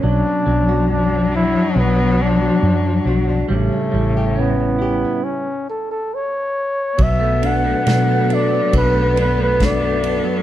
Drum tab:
RD |--------|--------|xxxxxxxx|
SD |--------|--------|--o---o-|
BD |--------|--------|o---o-o-|